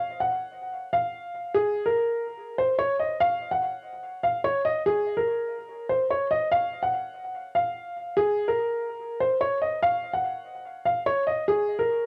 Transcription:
0, 0, Header, 1, 2, 480
1, 0, Start_track
1, 0, Key_signature, -5, "minor"
1, 0, Tempo, 413793
1, 1796, Time_signature, 4, 2, 24, 8
1, 13991, End_track
2, 0, Start_track
2, 0, Title_t, "Grand piano"
2, 0, Program_c, 0, 0
2, 0, Note_on_c, 0, 77, 94
2, 215, Note_off_c, 0, 77, 0
2, 236, Note_on_c, 0, 78, 77
2, 1030, Note_off_c, 0, 78, 0
2, 1078, Note_on_c, 0, 77, 82
2, 1754, Note_off_c, 0, 77, 0
2, 1792, Note_on_c, 0, 68, 97
2, 2132, Note_off_c, 0, 68, 0
2, 2154, Note_on_c, 0, 70, 82
2, 2949, Note_off_c, 0, 70, 0
2, 2996, Note_on_c, 0, 72, 83
2, 3181, Note_off_c, 0, 72, 0
2, 3231, Note_on_c, 0, 73, 90
2, 3418, Note_off_c, 0, 73, 0
2, 3474, Note_on_c, 0, 75, 72
2, 3660, Note_off_c, 0, 75, 0
2, 3717, Note_on_c, 0, 77, 106
2, 4055, Note_off_c, 0, 77, 0
2, 4076, Note_on_c, 0, 78, 75
2, 4869, Note_off_c, 0, 78, 0
2, 4911, Note_on_c, 0, 77, 80
2, 5098, Note_off_c, 0, 77, 0
2, 5153, Note_on_c, 0, 73, 91
2, 5339, Note_off_c, 0, 73, 0
2, 5393, Note_on_c, 0, 75, 86
2, 5579, Note_off_c, 0, 75, 0
2, 5637, Note_on_c, 0, 68, 103
2, 5975, Note_off_c, 0, 68, 0
2, 5994, Note_on_c, 0, 70, 77
2, 6789, Note_off_c, 0, 70, 0
2, 6836, Note_on_c, 0, 72, 76
2, 7021, Note_off_c, 0, 72, 0
2, 7081, Note_on_c, 0, 73, 77
2, 7264, Note_off_c, 0, 73, 0
2, 7316, Note_on_c, 0, 75, 84
2, 7501, Note_off_c, 0, 75, 0
2, 7557, Note_on_c, 0, 77, 99
2, 7895, Note_off_c, 0, 77, 0
2, 7917, Note_on_c, 0, 78, 77
2, 8710, Note_off_c, 0, 78, 0
2, 8758, Note_on_c, 0, 77, 82
2, 9434, Note_off_c, 0, 77, 0
2, 9473, Note_on_c, 0, 68, 102
2, 9813, Note_off_c, 0, 68, 0
2, 9834, Note_on_c, 0, 70, 82
2, 10629, Note_off_c, 0, 70, 0
2, 10677, Note_on_c, 0, 72, 83
2, 10861, Note_off_c, 0, 72, 0
2, 10913, Note_on_c, 0, 73, 86
2, 11099, Note_off_c, 0, 73, 0
2, 11155, Note_on_c, 0, 75, 73
2, 11340, Note_off_c, 0, 75, 0
2, 11398, Note_on_c, 0, 77, 107
2, 11735, Note_off_c, 0, 77, 0
2, 11756, Note_on_c, 0, 78, 75
2, 12550, Note_off_c, 0, 78, 0
2, 12592, Note_on_c, 0, 77, 80
2, 12778, Note_off_c, 0, 77, 0
2, 12833, Note_on_c, 0, 73, 94
2, 13019, Note_off_c, 0, 73, 0
2, 13071, Note_on_c, 0, 75, 83
2, 13258, Note_off_c, 0, 75, 0
2, 13316, Note_on_c, 0, 68, 99
2, 13655, Note_off_c, 0, 68, 0
2, 13674, Note_on_c, 0, 70, 78
2, 13991, Note_off_c, 0, 70, 0
2, 13991, End_track
0, 0, End_of_file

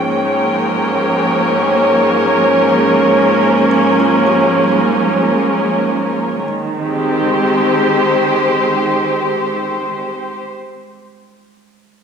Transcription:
0, 0, Header, 1, 3, 480
1, 0, Start_track
1, 0, Key_signature, -4, "major"
1, 0, Tempo, 500000
1, 11556, End_track
2, 0, Start_track
2, 0, Title_t, "Kalimba"
2, 0, Program_c, 0, 108
2, 3565, Note_on_c, 0, 61, 65
2, 3839, Note_on_c, 0, 65, 45
2, 4095, Note_on_c, 0, 67, 49
2, 4451, Note_on_c, 0, 55, 52
2, 5703, Note_off_c, 0, 61, 0
2, 5951, Note_off_c, 0, 65, 0
2, 6189, Note_off_c, 0, 67, 0
2, 6223, Note_on_c, 0, 56, 49
2, 6589, Note_off_c, 0, 55, 0
2, 9573, Note_off_c, 0, 56, 0
2, 11556, End_track
3, 0, Start_track
3, 0, Title_t, "String section"
3, 0, Program_c, 1, 48
3, 0, Note_on_c, 1, 44, 72
3, 0, Note_on_c, 1, 53, 65
3, 0, Note_on_c, 1, 58, 73
3, 0, Note_on_c, 1, 61, 77
3, 0, Note_on_c, 1, 73, 59
3, 0, Note_on_c, 1, 79, 73
3, 211, Note_on_c, 1, 70, 62
3, 1960, Note_off_c, 1, 79, 0
3, 6187, Note_off_c, 1, 58, 0
3, 6192, Note_off_c, 1, 73, 0
3, 6193, Note_off_c, 1, 53, 0
3, 6193, Note_off_c, 1, 70, 0
3, 6195, Note_off_c, 1, 61, 0
3, 6197, Note_on_c, 1, 51, 65
3, 6205, Note_off_c, 1, 44, 0
3, 6363, Note_on_c, 1, 56, 66
3, 6472, Note_on_c, 1, 60, 67
3, 6593, Note_on_c, 1, 67, 63
3, 6746, Note_on_c, 1, 72, 63
3, 9546, Note_off_c, 1, 51, 0
3, 9712, Note_off_c, 1, 56, 0
3, 9821, Note_off_c, 1, 60, 0
3, 9942, Note_off_c, 1, 67, 0
3, 10095, Note_off_c, 1, 72, 0
3, 11556, End_track
0, 0, End_of_file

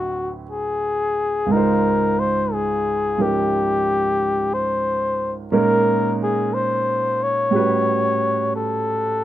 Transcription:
0, 0, Header, 1, 3, 480
1, 0, Start_track
1, 0, Tempo, 1001669
1, 722, Time_signature, 4, 2, 24, 8
1, 4428, End_track
2, 0, Start_track
2, 0, Title_t, "Flugelhorn"
2, 0, Program_c, 0, 56
2, 0, Note_on_c, 0, 66, 78
2, 162, Note_off_c, 0, 66, 0
2, 242, Note_on_c, 0, 68, 69
2, 728, Note_on_c, 0, 70, 69
2, 735, Note_off_c, 0, 68, 0
2, 1052, Note_on_c, 0, 72, 76
2, 1059, Note_off_c, 0, 70, 0
2, 1212, Note_on_c, 0, 68, 72
2, 1219, Note_off_c, 0, 72, 0
2, 1542, Note_on_c, 0, 67, 74
2, 1549, Note_off_c, 0, 68, 0
2, 2173, Note_on_c, 0, 72, 71
2, 2181, Note_off_c, 0, 67, 0
2, 2568, Note_off_c, 0, 72, 0
2, 2646, Note_on_c, 0, 70, 78
2, 2955, Note_off_c, 0, 70, 0
2, 2987, Note_on_c, 0, 68, 69
2, 3133, Note_on_c, 0, 72, 71
2, 3140, Note_off_c, 0, 68, 0
2, 3465, Note_on_c, 0, 73, 81
2, 3472, Note_off_c, 0, 72, 0
2, 4089, Note_off_c, 0, 73, 0
2, 4100, Note_on_c, 0, 69, 72
2, 4428, Note_off_c, 0, 69, 0
2, 4428, End_track
3, 0, Start_track
3, 0, Title_t, "Grand piano"
3, 0, Program_c, 1, 0
3, 0, Control_c, 1, 64, 127
3, 0, Note_on_c, 1, 38, 50
3, 0, Note_on_c, 1, 45, 45
3, 0, Note_on_c, 1, 54, 47
3, 0, Note_on_c, 1, 60, 46
3, 0, Note_on_c, 1, 64, 46
3, 0, Note_on_c, 1, 71, 53
3, 700, Note_on_c, 1, 37, 49
3, 708, Note_on_c, 1, 44, 43
3, 718, Note_off_c, 1, 38, 0
3, 719, Note_on_c, 1, 56, 46
3, 721, Note_off_c, 1, 45, 0
3, 723, Note_off_c, 1, 54, 0
3, 727, Note_off_c, 1, 60, 0
3, 728, Control_c, 1, 64, 0
3, 729, Note_off_c, 1, 64, 0
3, 731, Note_off_c, 1, 71, 0
3, 732, Note_on_c, 1, 63, 46
3, 742, Note_on_c, 1, 65, 42
3, 750, Note_on_c, 1, 72, 53
3, 819, Control_c, 1, 64, 127
3, 1516, Note_off_c, 1, 44, 0
3, 1523, Note_on_c, 1, 44, 36
3, 1526, Note_on_c, 1, 53, 32
3, 1527, Note_off_c, 1, 63, 0
3, 1530, Note_on_c, 1, 61, 34
3, 1534, Note_on_c, 1, 63, 34
3, 1537, Note_on_c, 1, 70, 40
3, 2634, Note_off_c, 1, 37, 0
3, 2638, Note_off_c, 1, 61, 0
3, 2639, Note_off_c, 1, 56, 0
3, 2643, Note_off_c, 1, 63, 0
3, 2644, Note_off_c, 1, 70, 0
3, 2644, Note_on_c, 1, 46, 54
3, 2645, Note_off_c, 1, 44, 0
3, 2645, Note_on_c, 1, 61, 51
3, 2646, Note_off_c, 1, 53, 0
3, 2646, Note_on_c, 1, 56, 55
3, 2650, Note_on_c, 1, 63, 47
3, 2651, Note_on_c, 1, 70, 64
3, 2652, Control_c, 1, 64, 0
3, 2655, Note_off_c, 1, 65, 0
3, 2659, Note_off_c, 1, 72, 0
3, 2745, Control_c, 1, 64, 127
3, 3598, Note_on_c, 1, 45, 55
3, 3604, Note_off_c, 1, 46, 0
3, 3604, Note_off_c, 1, 61, 0
3, 3605, Note_off_c, 1, 56, 0
3, 3605, Note_on_c, 1, 55, 50
3, 3607, Note_off_c, 1, 63, 0
3, 3607, Note_off_c, 1, 70, 0
3, 3611, Control_c, 1, 64, 0
3, 3611, Note_on_c, 1, 61, 49
3, 3618, Note_on_c, 1, 66, 47
3, 3623, Note_on_c, 1, 71, 59
3, 3699, Control_c, 1, 64, 127
3, 4428, Note_off_c, 1, 45, 0
3, 4428, Note_off_c, 1, 55, 0
3, 4428, Note_off_c, 1, 61, 0
3, 4428, Note_off_c, 1, 66, 0
3, 4428, Note_off_c, 1, 71, 0
3, 4428, End_track
0, 0, End_of_file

